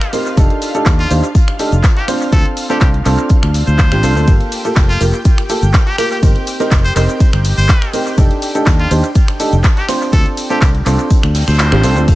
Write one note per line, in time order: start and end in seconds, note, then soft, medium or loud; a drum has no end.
0.00 0.10 C4 medium
0.00 0.10 D#4 medium
0.00 4.29 F4 medium
0.00 0.10 G4 medium
0.00 0.10 A#4 loud
0.00 0.13 C5 medium
0.00 4.29 F5 medium
0.00 finger snap medium
0.00 snare soft
0.00 closed hi-hat soft
0.13 0.35 C4 medium
0.13 0.35 D#4 medium
0.13 0.35 G4 medium
0.13 0.35 A#4 medium
0.13 open hi-hat loud
0.13 cabasa medium
0.13 shaker medium
0.26 cabasa soft
0.37 0.47 F1 loud
0.37 0.72 D4 medium
0.37 0.72 D#4 medium
0.37 0.72 G4 medium
0.37 0.72 A4 loud
0.37 kick loud
0.37 closed hi-hat medium
0.37 cabasa soft
0.37 shaker medium
0.50 closed hi-hat soft
0.62 open hi-hat loud
0.62 cabasa medium
0.62 shaker medium
0.75 1.08 D4 medium
0.75 1.08 D#4 medium
0.75 1.08 G4 medium
0.75 1.08 A4 loud
0.75 closed hi-hat soft
0.75 cabasa soft
0.86 1.05 D#2 loud
0.86 kick loud
0.86 snare loud
0.86 clap loud
0.86 closed hi-hat medium
0.86 cabasa soft
0.86 shaker medium
0.99 1.11 F4 loud
0.99 closed hi-hat soft
1.10 1.21 D#2 loud
1.10 1.24 D4 medium
1.10 1.24 D#4 medium
1.10 1.24 G4 medium
1.10 1.24 C5 medium
1.10 open hi-hat loud
1.10 cabasa medium
1.10 shaker medium
1.24 closed hi-hat soft
1.24 cabasa soft
1.35 kick loud
1.35 closed hi-hat medium
1.35 cabasa soft
1.35 shaker medium
1.48 finger snap medium
1.48 closed hi-hat soft
1.59 1.73 D4 medium
1.59 1.73 D#4 medium
1.59 1.73 G4 medium
1.59 1.73 A4 loud
1.59 open hi-hat loud
1.59 cabasa medium
1.59 shaker medium
1.72 1.81 F1 loud
1.72 closed hi-hat soft
1.72 cabasa soft
1.83 kick loud
1.83 snare loud
1.83 clap loud
1.83 closed hi-hat medium
1.83 cabasa soft
1.83 shaker medium
1.97 2.06 G4 medium
1.97 snare soft
1.97 closed hi-hat soft
2.08 2.29 C4 medium
2.08 2.29 D4 medium
2.08 2.29 F4 medium
2.08 2.29 C5 loud
2.08 finger snap medium
2.08 open hi-hat loud
2.08 cabasa medium
2.08 shaker medium
2.21 cabasa soft
2.32 2.43 D2 loud
2.32 2.67 C4 medium
2.32 2.67 D4 medium
2.32 2.67 F4 medium
2.32 2.46 A4 medium
2.32 2.67 A4 medium
2.32 kick loud
2.32 closed hi-hat medium
2.32 cabasa soft
2.32 shaker medium
2.45 closed hi-hat soft
2.57 open hi-hat loud
2.57 cabasa medium
2.57 shaker medium
2.70 2.90 C4 loud
2.70 2.90 D4 medium
2.70 2.90 F4 medium
2.70 2.77 G4 medium
2.70 2.90 A4 loud
2.70 snare soft
2.70 closed hi-hat soft
2.70 cabasa soft
2.81 3.01 C2 medium
2.81 2.90 G4 medium
2.81 kick loud
2.81 snare loud
2.81 clap loud
2.81 closed hi-hat medium
2.81 cabasa soft
2.81 shaker medium
2.94 closed hi-hat soft
3.05 3.16 C2 loud
3.05 3.89 C4 medium
3.05 3.89 D4 medium
3.05 3.89 F4 medium
3.05 3.89 A4 loud
3.05 clap medium
3.05 open hi-hat loud
3.05 cabasa medium
3.05 shaker medium
3.19 closed hi-hat soft
3.19 cabasa soft
3.29 kick loud
3.29 closed hi-hat medium
3.29 cabasa soft
3.29 shaker medium
3.43 3.62 D2 medium
3.43 finger snap medium
3.43 closed hi-hat soft
3.54 open hi-hat loud
3.54 cabasa medium
3.54 shaker medium
3.67 3.93 D2 medium
3.67 4.33 C5 loud
3.67 closed hi-hat soft
3.67 cabasa soft
3.79 kick loud
3.79 snare loud
3.79 clap loud
3.79 closed hi-hat medium
3.79 cabasa soft
3.79 shaker loud
3.91 4.01 A1 loud
3.91 4.01 C4 medium
3.91 4.01 D4 medium
3.91 4.01 F4 medium
3.91 4.01 G4 loud
3.91 finger snap medium
3.91 snare medium
3.91 closed hi-hat soft
4.03 4.16 C2 medium
4.03 4.14 C4 loud
4.03 4.14 D4 medium
4.03 4.14 F4 medium
4.03 4.14 A4 loud
4.03 open hi-hat medium
4.03 cabasa medium
4.03 shaker medium
4.16 4.25 D2 medium
4.16 4.26 C4 medium
4.16 4.26 D4 medium
4.16 4.26 F4 medium
4.16 4.26 A4 loud
4.16 cabasa soft
4.27 4.38 G1 loud
4.27 4.62 A#3 medium
4.27 4.62 F4 medium
4.27 12.09 G4 medium
4.27 4.62 G4 medium
4.27 4.62 A4 medium
4.27 12.09 G5 medium
4.27 kick loud
4.27 closed hi-hat medium
4.27 ride medium
4.27 cabasa soft
4.27 shaker medium
4.40 closed hi-hat soft
4.52 open hi-hat loud
4.52 ride medium
4.52 cabasa medium
4.52 shaker medium
4.65 4.98 A#3 medium
4.65 4.98 F4 medium
4.65 4.98 G4 medium
4.65 4.98 A4 loud
4.65 closed hi-hat soft
4.65 cabasa soft
4.76 4.96 F1 loud
4.76 kick loud
4.76 snare loud
4.76 clap loud
4.76 closed hi-hat medium
4.76 ride medium
4.76 cabasa soft
4.76 shaker medium
4.89 5.02 F4 loud
4.89 closed hi-hat soft
5.00 5.11 F1 loud
5.00 5.14 A#3 medium
5.00 5.14 F4 medium
5.00 5.14 G4 medium
5.00 5.14 A#4 medium
5.00 open hi-hat medium
5.00 ride medium
5.00 cabasa medium
5.00 shaker medium
5.14 closed hi-hat soft
5.14 cabasa soft
5.25 kick loud
5.25 closed hi-hat medium
5.25 ride medium
5.25 cabasa soft
5.25 shaker medium
5.38 finger snap medium
5.38 closed hi-hat soft
5.49 5.63 A#3 medium
5.49 5.63 F4 medium
5.49 5.63 G4 medium
5.49 5.63 A4 medium
5.49 open hi-hat loud
5.49 ride medium
5.49 cabasa medium
5.49 shaker medium
5.62 5.71 G1 loud
5.62 closed hi-hat soft
5.62 cabasa soft
5.74 kick loud
5.74 snare loud
5.74 clap loud
5.74 closed hi-hat medium
5.74 ride medium
5.74 cabasa soft
5.74 shaker medium
5.87 5.96 G4 medium
5.87 snare soft
5.87 closed hi-hat soft
5.98 6.19 A#3 medium
5.98 6.19 F4 medium
5.98 6.07 G4 medium
5.98 6.19 G4 medium
5.98 6.19 A#4 loud
5.98 finger snap medium
5.98 open hi-hat medium
5.98 ride medium
5.98 cabasa medium
5.98 shaker medium
6.11 6.19 G4 medium
6.11 cabasa soft
6.23 6.33 G1 loud
6.23 6.57 C4 medium
6.23 6.57 D#4 medium
6.23 6.57 G4 medium
6.23 6.57 A#4 medium
6.23 kick loud
6.23 closed hi-hat loud
6.23 ride medium
6.23 cabasa soft
6.23 shaker medium
6.36 closed hi-hat soft
6.47 open hi-hat loud
6.47 ride medium
6.47 cabasa medium
6.47 shaker medium
6.60 6.80 C4 loud
6.60 6.80 D#4 medium
6.60 6.80 G4 medium
6.60 6.80 A#4 loud
6.60 snare soft
6.60 closed hi-hat soft
6.60 cabasa soft
6.71 6.91 F1 loud
6.71 kick loud
6.71 snare loud
6.71 clap loud
6.71 closed hi-hat medium
6.71 ride medium
6.71 cabasa soft
6.71 shaker medium
6.85 6.92 C5 medium
6.85 closed hi-hat soft
6.96 7.06 F1 loud
6.96 7.91 C4 medium
6.96 7.91 D#4 medium
6.96 7.91 G4 medium
6.96 7.91 A#4 loud
6.96 7.04 C5 medium
6.96 clap medium
6.96 open hi-hat medium
6.96 ride medium
6.96 cabasa medium
6.96 shaker medium
7.09 closed hi-hat soft
7.09 cabasa soft
7.20 kick loud
7.20 closed hi-hat medium
7.20 ride medium
7.20 cabasa soft
7.20 shaker medium
7.33 7.52 G1 medium
7.33 finger snap medium
7.33 closed hi-hat soft
7.44 open hi-hat loud
7.44 ride medium
7.44 cabasa medium
7.44 shaker medium
7.58 7.67 G1 medium
7.58 7.93 C5 loud
7.58 closed hi-hat soft
7.58 cabasa soft
7.69 kick loud
7.69 snare loud
7.69 clap loud
7.69 closed hi-hat loud
7.69 ride medium
7.69 cabasa soft
7.69 shaker medium
7.82 finger snap medium
7.82 snare medium
7.82 closed hi-hat soft
7.93 8.15 C4 medium
7.93 8.15 D#4 medium
7.93 8.15 G4 medium
7.93 8.15 A#4 medium
7.93 open hi-hat medium
7.93 ride medium
7.93 cabasa medium
7.93 shaker medium
8.07 cabasa soft
8.18 8.28 F1 loud
8.18 8.52 D4 medium
8.18 8.52 D#4 medium
8.18 8.52 G4 medium
8.18 8.52 A4 medium
8.18 kick loud
8.18 closed hi-hat medium
8.18 ride medium
8.18 cabasa soft
8.18 shaker loud
8.31 closed hi-hat soft
8.42 open hi-hat loud
8.42 ride medium
8.42 cabasa medium
8.42 shaker medium
8.55 8.88 D4 medium
8.55 8.88 D#4 medium
8.55 8.88 G4 medium
8.55 8.88 A4 medium
8.55 closed hi-hat soft
8.55 cabasa soft
8.66 8.86 D#2 loud
8.66 kick loud
8.66 snare loud
8.66 clap loud
8.66 closed hi-hat loud
8.66 ride medium
8.66 cabasa soft
8.66 shaker medium
8.79 8.92 F4 loud
8.79 closed hi-hat soft
8.91 9.01 D#2 loud
8.91 9.04 D4 medium
8.91 9.04 D#4 medium
8.91 9.04 G4 medium
8.91 9.04 C5 medium
8.91 open hi-hat medium
8.91 ride medium
8.91 cabasa medium
8.91 shaker medium
9.04 closed hi-hat soft
9.04 cabasa soft
9.15 kick loud
9.15 closed hi-hat loud
9.15 ride medium
9.15 cabasa soft
9.15 shaker medium
9.28 finger snap medium
9.28 closed hi-hat soft
9.40 9.53 D4 medium
9.40 9.53 D#4 medium
9.40 9.53 G4 medium
9.40 9.53 A4 loud
9.40 open hi-hat loud
9.40 ride medium
9.40 cabasa medium
9.40 shaker medium
9.53 9.62 F1 medium
9.53 closed hi-hat soft
9.53 cabasa soft
9.64 kick loud
9.64 snare loud
9.64 clap loud
9.64 closed hi-hat loud
9.64 ride medium
9.64 cabasa soft
9.64 shaker medium
9.77 9.86 G4 medium
9.77 snare soft
9.77 closed hi-hat soft
9.88 10.09 C4 medium
9.88 10.09 D4 medium
9.88 10.09 F4 medium
9.88 10.09 C5 loud
9.88 finger snap medium
9.88 snare loud
9.88 open hi-hat medium
9.88 ride medium
9.88 cabasa medium
9.88 shaker medium
10.02 cabasa soft
10.13 10.23 D2 loud
10.13 10.47 C4 medium
10.13 10.47 D4 medium
10.13 10.47 F4 medium
10.13 10.47 A4 medium
10.13 10.27 A4 medium
10.13 kick loud
10.13 closed hi-hat loud
10.13 ride medium
10.13 cabasa soft
10.13 shaker medium
10.26 closed hi-hat soft
10.37 open hi-hat loud
10.37 ride medium
10.37 cabasa medium
10.37 shaker medium
10.50 10.71 C4 loud
10.50 10.71 D4 medium
10.50 10.71 F4 medium
10.50 10.58 G4 medium
10.50 10.70 A4 loud
10.50 closed hi-hat soft
10.50 cabasa soft
10.61 10.81 C2 loud
10.61 10.70 G4 medium
10.61 kick loud
10.61 snare loud
10.61 clap loud
10.61 closed hi-hat loud
10.61 ride medium
10.61 cabasa soft
10.61 shaker loud
10.75 closed hi-hat soft
10.86 10.96 C2 loud
10.86 11.70 C4 medium
10.86 11.70 D4 medium
10.86 11.70 F4 medium
10.86 11.70 A4 loud
10.86 clap medium
10.86 open hi-hat medium
10.86 ride medium
10.86 cabasa medium
10.86 shaker medium
10.99 closed hi-hat soft
10.99 cabasa soft
11.10 kick loud
11.10 closed hi-hat loud
11.10 ride medium
11.10 cabasa soft
11.10 shaker loud
11.23 11.42 D2 medium
11.23 finger snap medium
11.23 closed hi-hat soft
11.34 snare medium
11.34 open hi-hat loud
11.34 ride medium
11.34 cabasa medium
11.34 shaker medium
11.41 snare medium
11.41 shaker medium
11.47 11.74 D2 medium
11.47 12.08 C5 loud
11.47 finger snap medium
11.47 snare medium
11.47 closed hi-hat soft
11.47 cabasa soft
11.47 shaker medium
11.54 snare medium
11.54 shaker medium
11.59 snare loud
11.59 clap loud
11.59 closed hi-hat loud
11.59 ride medium
11.59 cabasa soft
11.59 shaker medium
11.72 11.81 A1 loud
11.72 11.82 C4 medium
11.72 11.82 D4 medium
11.72 11.82 F4 medium
11.72 11.82 G4 loud
11.72 finger snap medium
11.72 closed hi-hat soft
11.84 11.97 C2 medium
11.84 11.95 C4 loud
11.84 11.95 D4 medium
11.84 11.95 F4 medium
11.84 11.95 A4 loud
11.84 snare soft
11.84 open hi-hat medium
11.84 ride medium
11.84 cabasa medium
11.84 shaker medium
11.96 12.06 D2 medium
11.96 12.06 C4 medium
11.96 12.06 D4 medium
11.96 12.06 F4 medium
11.96 12.06 A4 medium
11.96 closed hi-hat soft
11.96 cabasa soft
12.08 12.15 G1 loud
12.08 12.15 A#3 medium
12.08 12.15 F4 medium
12.08 12.15 G4 medium
12.08 12.15 A4 medium
12.08 kick loud
12.08 closed hi-hat loud
12.08 crash loud
12.08 shaker medium